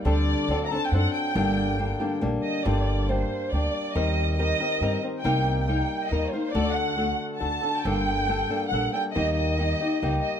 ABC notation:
X:1
M:3/4
L:1/16
Q:1/4=138
K:Gm
V:1 name="Violin section"
d4- d3/2 b/2 a3/2 g/2 ^f2 g2- | g8 z2 e2 | d4 c4 d4 | e4 e6 z2 |
g4 g4 e2 c2 | d2 ^f4 z2 a4 | g8 ^f2 g2 | e2 e8 e2 |]
V:2 name="Nylon-string guitar"
[D,G,CDA]4 [^F,CDA]2 [CDA]2 [F,CDA]4 | [G,,D,G,B,DG]4 [G,B,DG]2 [G,B,DG]2 [G,B,DG]4 | [G,,D,G,B,DG]4 [G,B,DG]4 [G,B,DG]4 | [E,G,CGB]4 [G,CGB]2 [CGB]2 [G,CGB]2 [CGB]2 |
[C,G,B,EB]4 [G,B,EB]4 [G,B,EB]2 [B,EB]2 | [D,A,D^FA]4 [A,DFA]4 [A,DFA]2 [DFA]2 | [G,,D,G,B,DA]4 [G,B,DA]2 [G,B,DA]2 [G,B,DA]2 [G,B,DA]2 | [E,G,B,EG]4 [G,B,EG]2 [B,EG]2 [G,B,EG]4 |]
V:3 name="Upright bass" clef=bass
D,,4 D,,4 ^F,,2 z2 | G,,,8 B,,,2 z2 | G,,,8 D,,2 z2 | E,,8 G,,2 z2 |
C,,8 E,,2 z2 | D,,8 D,,2 z2 | G,,,8 B,,,2 z2 | E,,8 ^C,,2 z2 |]